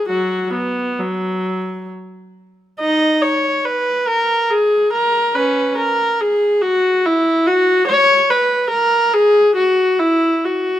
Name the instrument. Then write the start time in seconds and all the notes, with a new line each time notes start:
viola
0.08 F#3 F#4
0.53 B3
0.99 F#3
2.80 D#4 D#5
3.22 C#5
3.65 B4
4.07 A#4
4.51 G#4
4.93 A#4
5.35 C#4 B4
5.78 A#4
6.21 G#4
6.62 F#4
7.05 E4
7.47 F#4
7.88 C#5
8.30 B4
8.70 A#4
9.14 G#4
9.56 F#4
9.99 E4
10.45 F#4